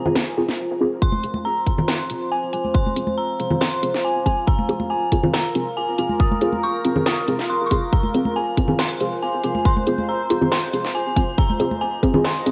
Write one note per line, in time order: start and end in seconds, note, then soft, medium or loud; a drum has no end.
0.00 1.01 F4 medium
0.00 1.03 A#4 medium
0.00 1.01 C5 medium
0.00 0.34 G#5 medium
0.06 0.15 C4 loud
0.06 0.15 F4 medium
0.06 0.15 G#4 loud
0.06 low conga medium
0.16 snare loud
0.37 0.47 C4 medium
0.37 0.47 F4 medium
0.37 0.47 G#4 medium
0.49 snare soft
0.81 0.87 C4 medium
0.81 0.87 F4 medium
0.81 0.87 G#4 medium
1.02 1.87 F1 loud
1.02 12.52 F4 medium
1.02 4.50 C5 medium
1.02 1.42 C6 medium
1.02 kick loud
1.12 high conga medium
1.24 1.34 C4 medium
1.24 1.34 F4 medium
1.24 1.34 G#4 loud
1.24 closed hi-hat medium
1.34 high conga medium
1.45 1.90 A#5 medium
1.67 1.73 C4 medium
1.67 1.73 F4 medium
1.67 1.73 G#4 medium
1.67 kick medium
1.67 closed hi-hat medium
1.78 1.87 C4 loud
1.78 1.87 F4 medium
1.78 1.87 G#4 loud
1.78 low conga medium
1.88 2.30 F1 loud
1.88 2.28 C6 medium
1.88 snare loud
2.10 2.20 C4 medium
2.10 2.20 F4 medium
2.10 2.20 G#4 medium
2.10 closed hi-hat medium
2.32 2.52 G#5 medium
2.53 2.95 G#1 medium
2.53 2.59 C4 medium
2.53 2.59 F4 medium
2.53 2.59 G#4 medium
2.53 2.75 G#5 medium
2.53 closed hi-hat medium
2.65 high conga medium
2.74 3.19 C6 medium
2.74 kick loud
2.86 high conga medium
2.96 4.24 F2 loud
2.96 3.06 C4 medium
2.96 3.06 F4 medium
2.96 3.06 G#4 loud
2.96 closed hi-hat medium
3.07 high conga medium
3.18 3.62 A#5 loud
3.39 3.46 C4 medium
3.39 3.46 F4 medium
3.39 3.46 G#4 loud
3.39 closed hi-hat medium
3.50 3.60 C4 loud
3.50 3.60 F4 medium
3.50 3.60 G#4 loud
3.50 low conga medium
3.61 4.05 C6 loud
3.61 snare loud
3.83 3.93 C4 medium
3.83 3.93 F4 medium
3.83 3.93 G#4 medium
3.83 closed hi-hat medium
3.94 snare soft
4.04 4.24 G#5 medium
4.26 4.46 F#1 loud
4.26 4.32 C4 medium
4.26 4.32 F4 medium
4.26 4.32 G#4 medium
4.26 4.46 G#5 medium
4.26 kick medium
4.26 closed hi-hat medium
4.47 5.32 F1 loud
4.47 7.95 A#4 medium
4.47 4.92 A#5 loud
4.47 kick loud
4.59 high conga medium
4.69 4.79 C4 medium
4.69 4.79 F4 medium
4.69 4.79 G#4 loud
4.69 closed hi-hat medium
4.80 high conga medium
4.90 5.31 G#5 medium
5.12 5.18 C4 medium
5.12 5.18 F4 medium
5.12 5.18 G#4 loud
5.12 kick medium
5.12 closed hi-hat medium
5.23 5.33 C4 loud
5.23 5.33 F4 medium
5.23 5.33 G#4 loud
5.23 low conga medium
5.33 5.75 F1 medium
5.33 5.78 A#5 medium
5.33 snare loud
5.55 5.65 C4 medium
5.55 5.65 F4 medium
5.55 5.65 G#4 medium
5.55 closed hi-hat medium
5.77 5.97 G#5 medium
5.98 6.40 G#1 medium
5.98 6.05 C4 medium
5.98 6.05 F4 medium
5.98 6.05 G#4 medium
5.98 6.08 G#5 medium
5.98 closed hi-hat medium
6.09 high conga medium
6.20 6.65 D#6 loud
6.20 kick loud
6.32 high conga medium
6.41 7.05 F#1 loud
6.41 6.52 C4 medium
6.41 6.52 F4 medium
6.41 6.52 G#4 loud
6.41 closed hi-hat medium
6.53 high conga medium
6.63 7.08 C#6 loud
6.85 6.91 C4 medium
6.85 6.91 F4 medium
6.85 6.91 G#4 loud
6.85 closed hi-hat medium
6.96 7.05 C4 loud
6.96 7.05 F4 loud
6.96 7.05 G#4 loud
6.96 low conga medium
7.06 7.91 C2 loud
7.06 7.51 D#6 loud
7.06 snare loud
7.28 7.34 C4 loud
7.28 7.34 F4 medium
7.28 7.34 G#4 loud
7.28 closed hi-hat medium
7.39 snare soft
7.50 7.67 C6 loud
7.66 7.71 C#6 medium
7.71 7.81 C4 loud
7.71 7.81 F4 medium
7.71 7.81 G#4 loud
7.71 7.93 C6 medium
7.71 kick medium
7.71 closed hi-hat medium
7.93 8.77 F1 loud
7.93 11.41 C5 medium
7.93 8.37 A#5 medium
7.93 kick loud
8.03 high conga medium
8.14 8.24 C4 medium
8.14 8.24 F4 medium
8.14 8.24 G#4 loud
8.14 closed hi-hat medium
8.25 high conga medium
8.36 8.76 G#5 medium
8.57 8.64 C4 medium
8.57 8.64 F4 medium
8.57 8.64 G#4 loud
8.57 kick medium
8.57 closed hi-hat medium
8.68 8.78 C4 loud
8.68 8.78 F4 medium
8.68 8.78 G#4 loud
8.68 low conga medium
8.79 9.21 F1 loud
8.79 9.24 C6 loud
8.79 snare loud
9.00 9.11 C4 medium
9.00 9.11 F4 medium
9.00 9.11 G#4 medium
9.00 closed hi-hat medium
9.22 9.43 G#5 medium
9.44 9.85 G#1 medium
9.44 9.50 C4 medium
9.44 9.50 F4 medium
9.44 9.50 G#4 medium
9.44 9.54 G#5 medium
9.44 closed hi-hat medium
9.55 high conga medium
9.65 10.10 C6 loud
9.65 kick loud
9.77 high conga medium
9.87 11.15 F2 loud
9.87 9.97 C4 loud
9.87 9.97 F4 medium
9.87 9.97 G#4 loud
9.87 closed hi-hat medium
9.98 high conga medium
10.09 10.49 A#5 loud
10.30 10.36 C4 medium
10.30 10.36 F4 medium
10.30 10.36 G#4 medium
10.30 closed hi-hat medium
10.41 10.50 C4 loud
10.41 10.50 F4 loud
10.41 10.50 G#4 loud
10.41 low conga medium
10.51 10.96 C6 loud
10.51 snare loud
10.73 10.83 C4 medium
10.73 10.83 F4 medium
10.73 10.83 G#4 loud
10.73 closed hi-hat medium
10.85 snare soft
10.95 11.15 G#5 medium
11.16 11.36 F#1 medium
11.16 11.23 C4 medium
11.16 11.23 F4 medium
11.16 11.23 G#4 medium
11.16 11.39 G#5 medium
11.16 kick medium
11.16 closed hi-hat medium
11.38 12.23 F1 loud
11.38 12.52 D#5 medium
11.38 11.82 A#5 medium
11.38 kick loud
11.50 high conga medium
11.60 11.70 C4 loud
11.60 11.70 F4 medium
11.60 11.70 G#4 loud
11.60 closed hi-hat medium
11.71 high conga medium
11.81 12.26 G#5 medium
12.03 12.09 C4 medium
12.03 12.09 F4 medium
12.03 12.09 G#4 loud
12.03 kick medium
12.03 closed hi-hat medium
12.14 12.23 C4 loud
12.14 12.23 F4 medium
12.14 12.23 G#4 loud
12.14 low conga medium
12.24 12.52 F1 medium
12.24 12.52 C6 medium
12.24 snare loud
12.46 12.52 C4 medium
12.46 12.52 F4 medium
12.46 12.52 G#4 medium
12.46 closed hi-hat medium